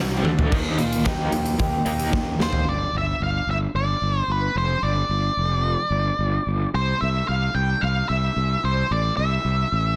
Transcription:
Already playing: fingered electric bass C2, overdriven electric guitar C3 G3 C4
0.23 fingered electric bass D2, overdriven electric guitar D3 A3 D4, high tom
0.39 floor tom
0.51 fingered electric bass D#2, overdriven electric guitar D#3 A#3 D#4, kick, crash
0.77 fingered electric bass A#2, overdriven electric guitar D#3 A#3, closed hi-hat
0.93 closed hi-hat
1.05 fingered electric bass D#2, overdriven electric guitar D#3 A#3 D#4, clean electric guitar G4, kick, snare, closed hi-hat
1.32 fingered electric bass D#2, overdriven electric guitar D#3 A#3, clean electric guitar D#4, closed hi-hat
1.46 closed hi-hat
1.59 fingered electric bass D#2, overdriven electric guitar D#3 A#3, clean electric guitar G4, kick, closed hi-hat
1.85 fingered electric bass D#2, overdriven electric guitar D#3 A#3 D#4, closed hi-hat
2.00 closed hi-hat
2.12 fingered electric bass D#2, overdriven electric guitar D#3 A#3, kick, snare
2.39 fingered electric bass D#2, overdriven electric guitar D#3 A#3, lead electric guitar C5, snare
2.53 floor tom
2.65 fingered electric bass G1, lead electric guitar D5
2.93 fingered electric bass G1
2.98 lead electric guitar E5
3.20 fingered electric bass G1, lead electric guitar F5
3.47 fingered electric bass G1, lead electric guitar E5
3.74 fingered electric bass G1, lead electric guitar D5
4.01 fingered electric bass G1
4.20 lead electric guitar C5
4.28 fingered electric bass G1, lead electric guitar B4
4.55 fingered electric bass F1, lead electric guitar C5
4.82 fingered electric bass G1, lead electric guitar D5
5.09 fingered electric bass G1
5.37 fingered electric bass F1
5.90 fingered electric bass G1
6.19 fingered electric bass G1
6.46 fingered electric bass G1
6.74 fingered electric bass C2, lead electric guitar C5
7.01 fingered electric bass C2, lead electric guitar E5
7.28 fingered electric bass C2, lead electric guitar F5
7.54 fingered electric bass C2, lead electric guitar G5
7.81 fingered electric bass C2, lead electric guitar F5
8.09 fingered electric bass C2, lead electric guitar E5
8.36 fingered electric bass C2
8.64 fingered electric bass C2, lead electric guitar C5
8.91 fingered electric bass A1, lead electric guitar D5
9.17 fingered electric bass C2, lead electric guitar E5
9.44 fingered electric bass C2
9.72 fingered electric bass A1

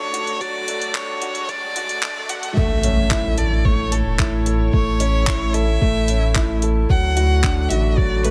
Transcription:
Already playing: string section D3 A3 D4 F#4, grand piano F#3 A3 D4 F#4, violin C#5, riser
0.13 grand piano F#4, closed hi-hat
0.27 closed hi-hat
0.41 grand piano F#3, violin D5, kick, closed hi-hat
0.68 grand piano A3, closed hi-hat
0.82 closed hi-hat
0.95 grand piano D4, violin C#5, kick, clap, closed hi-hat
1.22 grand piano F#4, closed hi-hat
1.35 closed hi-hat
1.48 grand piano F#3, violin D5, kick, closed hi-hat, swell
1.76 grand piano F#4, closed hi-hat
1.89 closed hi-hat
2.03 grand piano D4, kick, clap, closed hi-hat
2.29 grand piano F#4, violin F#5, closed hi-hat
2.43 closed hi-hat
2.56 sub bass A1, string section A2, grand piano A3, violin E5, kick, impact
2.83 grand piano C#4, closed hi-hat
2.91 string section C#5
3.05 string section E4
3.11 grand piano E4, kick, clap
3.38 grand piano A4, violin D5, closed hi-hat
3.65 grand piano A3, violin C#5, kick
3.92 violin A4, grand piano A4, closed hi-hat
4.06 sub bass E1
4.19 sub bass A1, grand piano E4, kick, clap
4.46 grand piano A4, closed hi-hat
4.73 sub bass A1, grand piano A3, violin C#5, kick
5.00 grand piano C#4, closed hi-hat
5.27 grand piano E4, kick, clap
5.54 grand piano A4, violin E5, closed hi-hat
5.82 sub bass A1, grand piano A3, kick
6.08 grand piano C#4, closed hi-hat
6.35 grand piano E4, kick, clap
6.62 grand piano A4, closed hi-hat
6.89 sub bass D2, string section D3, grand piano F#3, violin F#5, kick
7.17 grand piano F#4, closed hi-hat
7.22 string section F#4
7.43 grand piano D4, kick, clap
7.67 sub bass A1, grand piano F#4, string section D5, violin E5, closed hi-hat
7.97 grand piano F#3, violin D5, kick
8.23 grand piano A3, violin B4, closed hi-hat

